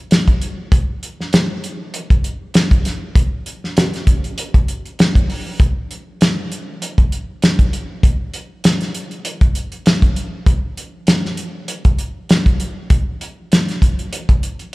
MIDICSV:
0, 0, Header, 1, 2, 480
1, 0, Start_track
1, 0, Tempo, 609137
1, 569, Time_signature, 4, 2, 24, 8
1, 11621, End_track
2, 0, Start_track
2, 0, Title_t, "Drums"
2, 86, Note_on_c, 9, 42, 78
2, 96, Note_on_c, 9, 38, 101
2, 165, Note_off_c, 9, 42, 0
2, 174, Note_off_c, 9, 38, 0
2, 216, Note_on_c, 9, 42, 33
2, 217, Note_on_c, 9, 36, 71
2, 295, Note_off_c, 9, 42, 0
2, 296, Note_off_c, 9, 36, 0
2, 327, Note_on_c, 9, 42, 55
2, 406, Note_off_c, 9, 42, 0
2, 566, Note_on_c, 9, 36, 107
2, 566, Note_on_c, 9, 42, 78
2, 645, Note_off_c, 9, 36, 0
2, 645, Note_off_c, 9, 42, 0
2, 810, Note_on_c, 9, 42, 63
2, 889, Note_off_c, 9, 42, 0
2, 949, Note_on_c, 9, 38, 36
2, 1028, Note_off_c, 9, 38, 0
2, 1046, Note_on_c, 9, 42, 87
2, 1055, Note_on_c, 9, 38, 113
2, 1124, Note_off_c, 9, 42, 0
2, 1134, Note_off_c, 9, 38, 0
2, 1290, Note_on_c, 9, 42, 67
2, 1369, Note_off_c, 9, 42, 0
2, 1527, Note_on_c, 9, 42, 90
2, 1606, Note_off_c, 9, 42, 0
2, 1658, Note_on_c, 9, 36, 80
2, 1660, Note_on_c, 9, 42, 39
2, 1737, Note_off_c, 9, 36, 0
2, 1738, Note_off_c, 9, 42, 0
2, 1767, Note_on_c, 9, 42, 65
2, 1845, Note_off_c, 9, 42, 0
2, 2003, Note_on_c, 9, 42, 83
2, 2012, Note_on_c, 9, 38, 102
2, 2082, Note_off_c, 9, 42, 0
2, 2091, Note_off_c, 9, 38, 0
2, 2136, Note_on_c, 9, 42, 39
2, 2137, Note_on_c, 9, 36, 77
2, 2215, Note_off_c, 9, 42, 0
2, 2216, Note_off_c, 9, 36, 0
2, 2247, Note_on_c, 9, 42, 62
2, 2256, Note_on_c, 9, 38, 34
2, 2326, Note_off_c, 9, 42, 0
2, 2335, Note_off_c, 9, 38, 0
2, 2486, Note_on_c, 9, 36, 109
2, 2486, Note_on_c, 9, 42, 87
2, 2565, Note_off_c, 9, 36, 0
2, 2565, Note_off_c, 9, 42, 0
2, 2727, Note_on_c, 9, 42, 65
2, 2806, Note_off_c, 9, 42, 0
2, 2870, Note_on_c, 9, 38, 34
2, 2948, Note_off_c, 9, 38, 0
2, 2968, Note_on_c, 9, 42, 81
2, 2978, Note_on_c, 9, 38, 110
2, 3047, Note_off_c, 9, 42, 0
2, 3056, Note_off_c, 9, 38, 0
2, 3101, Note_on_c, 9, 42, 38
2, 3110, Note_on_c, 9, 38, 33
2, 3180, Note_off_c, 9, 42, 0
2, 3189, Note_off_c, 9, 38, 0
2, 3207, Note_on_c, 9, 36, 81
2, 3207, Note_on_c, 9, 42, 59
2, 3285, Note_off_c, 9, 42, 0
2, 3286, Note_off_c, 9, 36, 0
2, 3342, Note_on_c, 9, 42, 41
2, 3421, Note_off_c, 9, 42, 0
2, 3449, Note_on_c, 9, 42, 93
2, 3528, Note_off_c, 9, 42, 0
2, 3580, Note_on_c, 9, 36, 84
2, 3581, Note_on_c, 9, 42, 39
2, 3659, Note_off_c, 9, 36, 0
2, 3660, Note_off_c, 9, 42, 0
2, 3691, Note_on_c, 9, 42, 65
2, 3769, Note_off_c, 9, 42, 0
2, 3826, Note_on_c, 9, 42, 33
2, 3904, Note_off_c, 9, 42, 0
2, 3932, Note_on_c, 9, 42, 77
2, 3942, Note_on_c, 9, 38, 110
2, 4011, Note_off_c, 9, 42, 0
2, 4020, Note_off_c, 9, 38, 0
2, 4061, Note_on_c, 9, 36, 72
2, 4066, Note_on_c, 9, 42, 36
2, 4140, Note_off_c, 9, 36, 0
2, 4145, Note_off_c, 9, 42, 0
2, 4174, Note_on_c, 9, 46, 75
2, 4253, Note_off_c, 9, 46, 0
2, 4411, Note_on_c, 9, 36, 114
2, 4412, Note_on_c, 9, 42, 77
2, 4489, Note_off_c, 9, 36, 0
2, 4491, Note_off_c, 9, 42, 0
2, 4655, Note_on_c, 9, 42, 61
2, 4733, Note_off_c, 9, 42, 0
2, 4892, Note_on_c, 9, 42, 80
2, 4901, Note_on_c, 9, 38, 110
2, 4971, Note_off_c, 9, 42, 0
2, 4980, Note_off_c, 9, 38, 0
2, 5135, Note_on_c, 9, 42, 64
2, 5214, Note_off_c, 9, 42, 0
2, 5374, Note_on_c, 9, 42, 90
2, 5453, Note_off_c, 9, 42, 0
2, 5500, Note_on_c, 9, 36, 85
2, 5500, Note_on_c, 9, 42, 39
2, 5579, Note_off_c, 9, 36, 0
2, 5579, Note_off_c, 9, 42, 0
2, 5613, Note_on_c, 9, 42, 61
2, 5691, Note_off_c, 9, 42, 0
2, 5850, Note_on_c, 9, 42, 83
2, 5859, Note_on_c, 9, 38, 100
2, 5929, Note_off_c, 9, 42, 0
2, 5938, Note_off_c, 9, 38, 0
2, 5981, Note_on_c, 9, 36, 73
2, 5981, Note_on_c, 9, 42, 39
2, 6059, Note_off_c, 9, 36, 0
2, 6060, Note_off_c, 9, 42, 0
2, 6093, Note_on_c, 9, 42, 65
2, 6172, Note_off_c, 9, 42, 0
2, 6330, Note_on_c, 9, 36, 103
2, 6333, Note_on_c, 9, 42, 84
2, 6409, Note_off_c, 9, 36, 0
2, 6412, Note_off_c, 9, 42, 0
2, 6568, Note_on_c, 9, 42, 71
2, 6647, Note_off_c, 9, 42, 0
2, 6808, Note_on_c, 9, 42, 93
2, 6818, Note_on_c, 9, 38, 110
2, 6887, Note_off_c, 9, 42, 0
2, 6896, Note_off_c, 9, 38, 0
2, 6939, Note_on_c, 9, 42, 41
2, 6949, Note_on_c, 9, 38, 35
2, 7018, Note_off_c, 9, 42, 0
2, 7028, Note_off_c, 9, 38, 0
2, 7048, Note_on_c, 9, 42, 67
2, 7127, Note_off_c, 9, 42, 0
2, 7179, Note_on_c, 9, 42, 41
2, 7258, Note_off_c, 9, 42, 0
2, 7288, Note_on_c, 9, 42, 92
2, 7366, Note_off_c, 9, 42, 0
2, 7416, Note_on_c, 9, 42, 41
2, 7417, Note_on_c, 9, 36, 83
2, 7495, Note_off_c, 9, 42, 0
2, 7496, Note_off_c, 9, 36, 0
2, 7526, Note_on_c, 9, 42, 66
2, 7605, Note_off_c, 9, 42, 0
2, 7658, Note_on_c, 9, 42, 38
2, 7737, Note_off_c, 9, 42, 0
2, 7768, Note_on_c, 9, 42, 78
2, 7777, Note_on_c, 9, 38, 103
2, 7847, Note_off_c, 9, 42, 0
2, 7856, Note_off_c, 9, 38, 0
2, 7898, Note_on_c, 9, 36, 71
2, 7898, Note_on_c, 9, 42, 39
2, 7977, Note_off_c, 9, 36, 0
2, 7977, Note_off_c, 9, 42, 0
2, 8008, Note_on_c, 9, 42, 59
2, 8087, Note_off_c, 9, 42, 0
2, 8246, Note_on_c, 9, 36, 101
2, 8246, Note_on_c, 9, 42, 83
2, 8325, Note_off_c, 9, 36, 0
2, 8325, Note_off_c, 9, 42, 0
2, 8490, Note_on_c, 9, 42, 65
2, 8569, Note_off_c, 9, 42, 0
2, 8722, Note_on_c, 9, 42, 80
2, 8732, Note_on_c, 9, 38, 122
2, 8801, Note_off_c, 9, 42, 0
2, 8810, Note_off_c, 9, 38, 0
2, 8868, Note_on_c, 9, 38, 37
2, 8946, Note_off_c, 9, 38, 0
2, 8962, Note_on_c, 9, 42, 62
2, 9041, Note_off_c, 9, 42, 0
2, 9204, Note_on_c, 9, 42, 89
2, 9283, Note_off_c, 9, 42, 0
2, 9336, Note_on_c, 9, 42, 41
2, 9338, Note_on_c, 9, 36, 89
2, 9414, Note_off_c, 9, 42, 0
2, 9417, Note_off_c, 9, 36, 0
2, 9444, Note_on_c, 9, 42, 67
2, 9523, Note_off_c, 9, 42, 0
2, 9688, Note_on_c, 9, 42, 83
2, 9697, Note_on_c, 9, 38, 108
2, 9766, Note_off_c, 9, 42, 0
2, 9776, Note_off_c, 9, 38, 0
2, 9819, Note_on_c, 9, 36, 74
2, 9819, Note_on_c, 9, 42, 37
2, 9897, Note_off_c, 9, 36, 0
2, 9898, Note_off_c, 9, 42, 0
2, 9927, Note_on_c, 9, 42, 60
2, 10006, Note_off_c, 9, 42, 0
2, 10166, Note_on_c, 9, 42, 83
2, 10168, Note_on_c, 9, 36, 110
2, 10245, Note_off_c, 9, 42, 0
2, 10247, Note_off_c, 9, 36, 0
2, 10410, Note_on_c, 9, 42, 72
2, 10489, Note_off_c, 9, 42, 0
2, 10652, Note_on_c, 9, 42, 90
2, 10661, Note_on_c, 9, 38, 117
2, 10730, Note_off_c, 9, 42, 0
2, 10740, Note_off_c, 9, 38, 0
2, 10783, Note_on_c, 9, 42, 41
2, 10793, Note_on_c, 9, 38, 32
2, 10862, Note_off_c, 9, 42, 0
2, 10871, Note_off_c, 9, 38, 0
2, 10889, Note_on_c, 9, 36, 78
2, 10893, Note_on_c, 9, 42, 68
2, 10968, Note_off_c, 9, 36, 0
2, 10971, Note_off_c, 9, 42, 0
2, 11024, Note_on_c, 9, 42, 39
2, 11102, Note_off_c, 9, 42, 0
2, 11131, Note_on_c, 9, 42, 102
2, 11210, Note_off_c, 9, 42, 0
2, 11260, Note_on_c, 9, 36, 79
2, 11262, Note_on_c, 9, 42, 42
2, 11339, Note_off_c, 9, 36, 0
2, 11341, Note_off_c, 9, 42, 0
2, 11371, Note_on_c, 9, 42, 64
2, 11450, Note_off_c, 9, 42, 0
2, 11500, Note_on_c, 9, 42, 39
2, 11579, Note_off_c, 9, 42, 0
2, 11621, End_track
0, 0, End_of_file